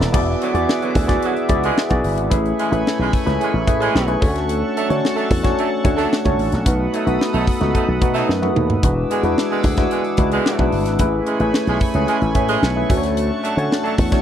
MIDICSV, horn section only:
0, 0, Header, 1, 2, 480
1, 0, Start_track
1, 0, Tempo, 542986
1, 124, Time_signature, 4, 2, 24, 8
1, 12569, End_track
2, 0, Start_track
2, 0, Title_t, "Horn section"
2, 0, Program_c, 0, 61
2, 368, Note_on_c, 0, 50, 78
2, 369, Note_on_c, 0, 54, 81
2, 369, Note_on_c, 0, 59, 84
2, 369, Note_on_c, 0, 66, 88
2, 469, Note_off_c, 0, 50, 0
2, 469, Note_off_c, 0, 54, 0
2, 469, Note_off_c, 0, 59, 0
2, 469, Note_off_c, 0, 66, 0
2, 727, Note_on_c, 0, 54, 76
2, 727, Note_on_c, 0, 66, 83
2, 729, Note_on_c, 0, 59, 81
2, 731, Note_on_c, 0, 50, 79
2, 828, Note_off_c, 0, 54, 0
2, 828, Note_off_c, 0, 66, 0
2, 830, Note_off_c, 0, 59, 0
2, 831, Note_off_c, 0, 50, 0
2, 1091, Note_on_c, 0, 50, 77
2, 1091, Note_on_c, 0, 54, 78
2, 1091, Note_on_c, 0, 59, 76
2, 1091, Note_on_c, 0, 66, 84
2, 1191, Note_off_c, 0, 50, 0
2, 1191, Note_off_c, 0, 54, 0
2, 1191, Note_off_c, 0, 59, 0
2, 1191, Note_off_c, 0, 66, 0
2, 1446, Note_on_c, 0, 50, 98
2, 1451, Note_on_c, 0, 59, 92
2, 1454, Note_on_c, 0, 56, 96
2, 1454, Note_on_c, 0, 68, 105
2, 1600, Note_off_c, 0, 50, 0
2, 1603, Note_off_c, 0, 59, 0
2, 1605, Note_off_c, 0, 56, 0
2, 1605, Note_off_c, 0, 68, 0
2, 2285, Note_on_c, 0, 52, 80
2, 2285, Note_on_c, 0, 61, 84
2, 2286, Note_on_c, 0, 56, 80
2, 2286, Note_on_c, 0, 68, 87
2, 2388, Note_off_c, 0, 52, 0
2, 2388, Note_off_c, 0, 61, 0
2, 2389, Note_off_c, 0, 56, 0
2, 2389, Note_off_c, 0, 68, 0
2, 2647, Note_on_c, 0, 56, 83
2, 2647, Note_on_c, 0, 68, 90
2, 2649, Note_on_c, 0, 52, 81
2, 2652, Note_on_c, 0, 61, 78
2, 2750, Note_off_c, 0, 56, 0
2, 2750, Note_off_c, 0, 68, 0
2, 2751, Note_off_c, 0, 52, 0
2, 2752, Note_off_c, 0, 61, 0
2, 3008, Note_on_c, 0, 56, 76
2, 3008, Note_on_c, 0, 68, 83
2, 3010, Note_on_c, 0, 61, 81
2, 3011, Note_on_c, 0, 52, 82
2, 3110, Note_off_c, 0, 56, 0
2, 3110, Note_off_c, 0, 68, 0
2, 3111, Note_off_c, 0, 61, 0
2, 3112, Note_off_c, 0, 52, 0
2, 3365, Note_on_c, 0, 61, 99
2, 3368, Note_on_c, 0, 56, 100
2, 3368, Note_on_c, 0, 68, 108
2, 3369, Note_on_c, 0, 52, 91
2, 3672, Note_off_c, 0, 61, 0
2, 3674, Note_off_c, 0, 56, 0
2, 3674, Note_off_c, 0, 68, 0
2, 3675, Note_off_c, 0, 52, 0
2, 4200, Note_on_c, 0, 57, 88
2, 4200, Note_on_c, 0, 69, 96
2, 4203, Note_on_c, 0, 62, 81
2, 4204, Note_on_c, 0, 54, 76
2, 4306, Note_off_c, 0, 57, 0
2, 4306, Note_off_c, 0, 69, 0
2, 4307, Note_off_c, 0, 62, 0
2, 4308, Note_off_c, 0, 54, 0
2, 4561, Note_on_c, 0, 62, 81
2, 4562, Note_on_c, 0, 54, 79
2, 4564, Note_on_c, 0, 57, 87
2, 4564, Note_on_c, 0, 69, 95
2, 4666, Note_off_c, 0, 62, 0
2, 4667, Note_off_c, 0, 54, 0
2, 4668, Note_off_c, 0, 57, 0
2, 4668, Note_off_c, 0, 69, 0
2, 4924, Note_on_c, 0, 62, 81
2, 4927, Note_on_c, 0, 57, 81
2, 4927, Note_on_c, 0, 69, 88
2, 4930, Note_on_c, 0, 54, 80
2, 5028, Note_off_c, 0, 62, 0
2, 5030, Note_off_c, 0, 57, 0
2, 5030, Note_off_c, 0, 69, 0
2, 5031, Note_off_c, 0, 54, 0
2, 5280, Note_on_c, 0, 57, 97
2, 5280, Note_on_c, 0, 69, 105
2, 5281, Note_on_c, 0, 62, 98
2, 5284, Note_on_c, 0, 54, 89
2, 5435, Note_off_c, 0, 57, 0
2, 5435, Note_off_c, 0, 69, 0
2, 5436, Note_off_c, 0, 62, 0
2, 5438, Note_off_c, 0, 54, 0
2, 6122, Note_on_c, 0, 54, 86
2, 6124, Note_on_c, 0, 63, 79
2, 6127, Note_on_c, 0, 57, 80
2, 6127, Note_on_c, 0, 69, 86
2, 6226, Note_off_c, 0, 54, 0
2, 6228, Note_off_c, 0, 63, 0
2, 6229, Note_off_c, 0, 57, 0
2, 6229, Note_off_c, 0, 69, 0
2, 6481, Note_on_c, 0, 57, 83
2, 6481, Note_on_c, 0, 69, 90
2, 6482, Note_on_c, 0, 54, 83
2, 6485, Note_on_c, 0, 63, 79
2, 6585, Note_off_c, 0, 57, 0
2, 6585, Note_off_c, 0, 69, 0
2, 6586, Note_off_c, 0, 54, 0
2, 6588, Note_off_c, 0, 63, 0
2, 6838, Note_on_c, 0, 63, 79
2, 6840, Note_on_c, 0, 54, 79
2, 6840, Note_on_c, 0, 57, 74
2, 6840, Note_on_c, 0, 69, 80
2, 6943, Note_off_c, 0, 63, 0
2, 6945, Note_off_c, 0, 54, 0
2, 6945, Note_off_c, 0, 57, 0
2, 6945, Note_off_c, 0, 69, 0
2, 7198, Note_on_c, 0, 63, 91
2, 7199, Note_on_c, 0, 57, 93
2, 7199, Note_on_c, 0, 69, 102
2, 7201, Note_on_c, 0, 54, 90
2, 7353, Note_off_c, 0, 63, 0
2, 7354, Note_off_c, 0, 57, 0
2, 7354, Note_off_c, 0, 69, 0
2, 7355, Note_off_c, 0, 54, 0
2, 8042, Note_on_c, 0, 59, 76
2, 8043, Note_on_c, 0, 50, 80
2, 8045, Note_on_c, 0, 56, 85
2, 8045, Note_on_c, 0, 68, 93
2, 8146, Note_off_c, 0, 50, 0
2, 8146, Note_off_c, 0, 59, 0
2, 8147, Note_off_c, 0, 56, 0
2, 8147, Note_off_c, 0, 68, 0
2, 8395, Note_on_c, 0, 59, 83
2, 8396, Note_on_c, 0, 50, 76
2, 8397, Note_on_c, 0, 56, 81
2, 8397, Note_on_c, 0, 68, 88
2, 8501, Note_off_c, 0, 59, 0
2, 8502, Note_off_c, 0, 50, 0
2, 8503, Note_off_c, 0, 56, 0
2, 8503, Note_off_c, 0, 68, 0
2, 8763, Note_on_c, 0, 56, 81
2, 8763, Note_on_c, 0, 68, 88
2, 8764, Note_on_c, 0, 59, 77
2, 8765, Note_on_c, 0, 50, 80
2, 8865, Note_off_c, 0, 56, 0
2, 8865, Note_off_c, 0, 68, 0
2, 8867, Note_off_c, 0, 50, 0
2, 8867, Note_off_c, 0, 59, 0
2, 9127, Note_on_c, 0, 56, 90
2, 9127, Note_on_c, 0, 68, 98
2, 9128, Note_on_c, 0, 50, 98
2, 9132, Note_on_c, 0, 59, 90
2, 9432, Note_off_c, 0, 50, 0
2, 9432, Note_off_c, 0, 56, 0
2, 9432, Note_off_c, 0, 68, 0
2, 9434, Note_off_c, 0, 59, 0
2, 9961, Note_on_c, 0, 52, 80
2, 9961, Note_on_c, 0, 61, 80
2, 9963, Note_on_c, 0, 56, 83
2, 9963, Note_on_c, 0, 68, 90
2, 10064, Note_off_c, 0, 52, 0
2, 10064, Note_off_c, 0, 61, 0
2, 10065, Note_off_c, 0, 56, 0
2, 10065, Note_off_c, 0, 68, 0
2, 10318, Note_on_c, 0, 52, 77
2, 10320, Note_on_c, 0, 61, 81
2, 10321, Note_on_c, 0, 56, 81
2, 10321, Note_on_c, 0, 68, 88
2, 10422, Note_off_c, 0, 52, 0
2, 10423, Note_off_c, 0, 61, 0
2, 10424, Note_off_c, 0, 56, 0
2, 10424, Note_off_c, 0, 68, 0
2, 10671, Note_on_c, 0, 61, 81
2, 10672, Note_on_c, 0, 52, 79
2, 10674, Note_on_c, 0, 56, 84
2, 10674, Note_on_c, 0, 68, 91
2, 10778, Note_off_c, 0, 61, 0
2, 10779, Note_off_c, 0, 52, 0
2, 10780, Note_off_c, 0, 56, 0
2, 10780, Note_off_c, 0, 68, 0
2, 11032, Note_on_c, 0, 56, 101
2, 11032, Note_on_c, 0, 68, 110
2, 11033, Note_on_c, 0, 52, 94
2, 11033, Note_on_c, 0, 61, 94
2, 11188, Note_off_c, 0, 56, 0
2, 11188, Note_off_c, 0, 68, 0
2, 11189, Note_off_c, 0, 52, 0
2, 11189, Note_off_c, 0, 61, 0
2, 11874, Note_on_c, 0, 57, 87
2, 11874, Note_on_c, 0, 69, 95
2, 11875, Note_on_c, 0, 54, 82
2, 11877, Note_on_c, 0, 62, 88
2, 11979, Note_off_c, 0, 57, 0
2, 11979, Note_off_c, 0, 69, 0
2, 11980, Note_off_c, 0, 54, 0
2, 11980, Note_off_c, 0, 62, 0
2, 12231, Note_on_c, 0, 62, 83
2, 12232, Note_on_c, 0, 57, 86
2, 12232, Note_on_c, 0, 69, 93
2, 12233, Note_on_c, 0, 54, 88
2, 12337, Note_off_c, 0, 57, 0
2, 12337, Note_off_c, 0, 62, 0
2, 12337, Note_off_c, 0, 69, 0
2, 12338, Note_off_c, 0, 54, 0
2, 12569, End_track
0, 0, End_of_file